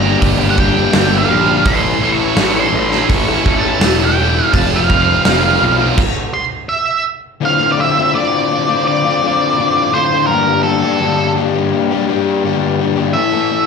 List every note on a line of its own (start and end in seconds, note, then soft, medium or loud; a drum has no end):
0.00 0.15 G1 medium
0.00 0.39 D4 medium
0.00 0.38 G4 medium
0.00 0.17 A#5 medium
0.04 0.40 G3 medium
0.04 0.40 A#3 medium
0.22 0.81 G1 medium
0.22 kick loud
0.22 open hi-hat medium
0.39 0.55 G3 medium
0.39 0.56 A#3 medium
0.39 0.57 D4 medium
0.39 0.58 G4 medium
0.50 0.58 F#5 medium
0.56 0.77 G3 medium
0.56 0.76 A#3 medium
0.56 0.75 D4 medium
0.56 0.74 G4 medium
0.56 1.17 G5 medium
0.56 kick medium
0.75 0.92 G3 medium
0.75 0.92 A#3 medium
0.75 0.93 D4 medium
0.75 0.93 G4 medium
0.92 1.24 G1 medium
0.92 1.63 G2 medium
0.92 1.64 D3 medium
0.92 1.27 G3 loud
0.92 1.28 A#3 loud
0.92 1.29 D4 loud
0.92 1.29 G4 loud
0.92 snare loud
0.92 open hi-hat medium
1.12 1.29 G3 medium
1.12 1.30 A#3 medium
1.12 1.31 D4 medium
1.12 1.31 G4 medium
1.18 1.63 F5 medium
1.28 1.59 A#1 medium
1.28 1.47 G3 medium
1.28 1.46 A#3 medium
1.28 1.44 D4 medium
1.28 1.44 G4 medium
1.45 1.64 G3 medium
1.45 1.64 A#3 medium
1.45 1.63 D4 medium
1.45 1.62 G4 medium
1.64 1.95 A1 loud
1.64 2.34 A2 loud
1.64 2.35 E3 medium
1.64 1.99 A3 medium
1.64 2.00 C#4 medium
1.64 2.01 E4 loud
1.64 2.02 A4 loud
1.64 2.11 C6 loud
1.64 kick loud
1.64 open hi-hat medium
2.00 2.31 A1 medium
2.00 2.35 A3 medium
2.00 2.36 C#4 medium
2.00 2.36 E4 medium
2.00 2.37 A4 medium
2.13 2.60 C#6 loud
2.20 2.38 A3 medium
2.20 2.38 C#4 medium
2.20 2.38 E4 medium
2.20 2.38 A4 medium
2.35 2.67 A1 medium
2.35 2.91 A2 medium
2.35 2.92 E3 medium
2.35 2.55 A3 medium
2.35 2.55 C#4 medium
2.35 2.53 E4 medium
2.35 2.53 A4 medium
2.35 snare loud
2.35 open hi-hat medium
2.54 2.71 A3 medium
2.54 2.72 C#4 medium
2.54 2.73 E4 medium
2.54 2.74 A4 medium
2.60 3.09 C6 medium
2.73 3.03 A1 medium
2.73 2.92 A3 medium
2.73 2.91 C#4 medium
2.73 2.91 E4 medium
2.73 2.89 A4 medium
2.73 muted distorted electric guitar stroke soft
2.90 3.29 A3 medium
2.90 3.28 C#4 medium
2.90 3.27 E4 medium
2.90 3.26 A4 medium
2.90 snare soft
3.09 3.39 A1 medium
3.09 3.59 C#6 loud
3.09 kick loud
3.09 open hi-hat medium
3.27 3.43 A3 medium
3.27 3.43 C#4 medium
3.27 3.45 E4 medium
3.27 3.45 A4 medium
3.44 3.75 A1 medium
3.44 3.64 A3 medium
3.44 3.63 C#4 medium
3.44 3.62 E4 medium
3.44 3.61 A4 medium
3.44 kick medium
3.59 3.82 A4 medium
3.59 4.04 A5 medium
3.63 3.80 A3 medium
3.63 3.81 C#4 medium
3.63 3.81 E4 medium
3.80 4.39 E1 loud
3.80 4.51 A2 medium
3.80 4.51 E3 loud
3.80 4.15 A3 loud
3.80 4.17 C#4 medium
3.80 4.17 E4 loud
3.80 4.19 A4 loud
3.80 snare loud
3.80 open hi-hat medium
4.00 4.17 A3 medium
4.00 4.18 C#4 medium
4.00 4.19 E4 medium
4.00 4.20 A4 medium
4.05 4.53 G5 medium
4.17 4.35 A3 medium
4.17 4.35 C#4 medium
4.17 4.34 E4 medium
4.17 4.34 A4 medium
4.35 4.52 A3 medium
4.35 4.52 C#4 medium
4.35 4.52 E4 medium
4.35 4.51 A4 medium
4.52 5.12 F1 loud
4.52 5.24 F2 medium
4.52 5.25 C3 loud
4.52 4.89 F3 medium
4.52 4.90 A3 loud
4.52 4.91 C4 medium
4.52 4.92 F4 loud
4.52 4.79 A5 medium
4.52 kick loud
4.52 open hi-hat medium
4.76 5.81 F5 medium
4.90 5.25 F3 medium
4.90 5.26 A3 medium
4.90 5.27 C4 medium
4.90 5.26 F4 medium
4.90 kick medium
5.09 5.27 F3 medium
5.09 5.27 A3 medium
5.09 5.28 C4 medium
5.09 5.29 F4 medium
5.25 5.56 F1 medium
5.25 5.80 F2 medium
5.25 5.80 C3 medium
5.25 5.44 F3 medium
5.25 5.43 A3 loud
5.25 5.43 C4 loud
5.25 5.41 F4 loud
5.25 snare loud
5.25 open hi-hat medium
5.42 5.59 F3 medium
5.42 5.60 A3 medium
5.42 5.60 C4 medium
5.42 5.62 F4 medium
5.60 5.91 B1 medium
5.60 5.80 F3 medium
5.60 5.79 A3 medium
5.60 5.78 C4 medium
5.60 5.77 F4 medium
5.60 muted distorted electric guitar stroke soft
5.78 5.96 F3 medium
5.78 5.96 A3 medium
5.78 5.96 C4 medium
5.78 5.95 F4 medium
5.98 kick loud
5.98 crash loud
6.34 6.43 C6 loud
6.69 7.03 E5 medium
7.41 7.95 D2 medium
7.41 7.96 A2 loud
7.41 7.60 D3 medium
7.41 7.59 A3 loud
7.41 7.59 C4 loud
7.41 7.57 F4 loud
7.45 7.72 F5 loud
7.58 7.76 D3 medium
7.58 7.77 A3 medium
7.58 7.77 C4 medium
7.58 7.78 F4 medium
7.72 7.78 D5 medium
7.77 7.97 D3 medium
7.77 7.96 A3 medium
7.77 7.94 C4 medium
7.77 7.93 F4 medium
7.81 8.15 E5 loud
7.94 8.13 D3 medium
7.94 8.14 A3 medium
7.94 8.15 C4 medium
7.94 8.15 F4 medium
8.14 8.86 D2 medium
8.14 8.86 A2 medium
8.14 8.48 D3 loud
8.14 8.49 A3 loud
8.14 8.50 C4 loud
8.14 8.51 F4 loud
8.14 8.86 D5 medium
8.49 8.69 D3 medium
8.49 8.68 A3 medium
8.49 8.67 C4 medium
8.49 8.66 F4 medium
8.67 9.06 D3 medium
8.67 9.05 A3 medium
8.67 9.05 C4 medium
8.67 9.03 F4 medium
8.87 9.97 D5 medium
9.04 9.21 D3 medium
9.04 9.22 A3 medium
9.04 9.23 C4 medium
9.04 9.24 F4 medium
9.22 9.57 D3 medium
9.22 9.57 A3 medium
9.22 9.58 C4 medium
9.22 9.59 F4 medium
9.57 10.27 D2 medium
9.57 10.27 A2 loud
9.57 9.92 D3 loud
9.57 9.93 A3 loud
9.57 9.93 C4 loud
9.57 9.94 F4 loud
9.94 10.13 D3 medium
9.94 10.12 A3 medium
9.94 10.10 C4 medium
9.94 10.10 F4 medium
9.94 10.26 C5 loud
10.11 10.28 D3 medium
10.11 10.28 A3 medium
10.11 10.27 C4 medium
10.11 10.27 F4 medium
10.27 10.82 G2 medium
10.27 10.83 D3 medium
10.27 10.48 G3 loud
10.27 10.47 A#3 loud
10.27 10.46 D4 loud
10.27 10.63 A#4 medium
10.31 10.44 G4 loud
10.46 10.63 G3 medium
10.46 10.64 A#3 medium
10.46 10.65 D4 medium
10.46 10.65 G4 medium
10.63 10.83 G3 medium
10.63 10.83 A#3 medium
10.63 10.82 D4 medium
10.63 10.81 G4 medium
10.63 11.32 A4 medium
10.82 11.00 G3 medium
10.82 11.01 A#3 medium
10.82 11.01 D4 medium
10.82 11.01 G4 medium
10.99 11.72 G2 medium
10.99 11.72 D3 loud
10.99 11.34 G3 loud
10.99 11.36 A#3 loud
10.99 11.36 D4 loud
10.99 11.37 G4 loud
11.35 11.55 G3 medium
11.35 11.55 A#3 medium
11.35 11.54 D4 medium
11.35 11.53 G4 medium
11.54 11.92 G3 medium
11.54 11.91 A#3 medium
11.54 11.90 D4 medium
11.54 11.89 G4 medium
11.91 12.07 G3 medium
11.91 12.08 A#3 medium
11.91 12.08 D4 medium
11.91 12.10 G4 medium
12.08 12.44 G3 medium
12.08 12.45 A#3 medium
12.08 12.45 D4 medium
12.08 12.45 G4 medium
12.44 13.13 G2 medium
12.44 13.14 D3 medium
12.44 12.77 G3 loud
12.44 12.78 A#3 medium
12.44 12.79 D4 loud
12.44 12.81 G4 loud
12.78 12.98 G3 medium
12.78 12.97 A#3 medium
12.78 12.97 D4 medium
12.78 12.95 G4 medium
12.97 13.14 G3 medium
12.97 13.14 A#3 medium
12.97 13.14 D4 medium
12.97 13.13 G4 medium
13.13 13.66 A2 loud
13.13 13.66 E3 loud
13.13 13.35 A3 loud
13.13 13.33 C#4 loud
13.13 13.32 E4 loud
13.13 13.32 A4 loud
13.13 13.66 E5 loud
13.33 13.49 A3 medium
13.33 13.50 C#4 medium
13.33 13.51 E4 medium
13.33 13.52 A4 medium
13.50 13.66 A3 medium
13.50 13.66 C#4 medium
13.50 13.66 E4 medium
13.50 13.66 A4 medium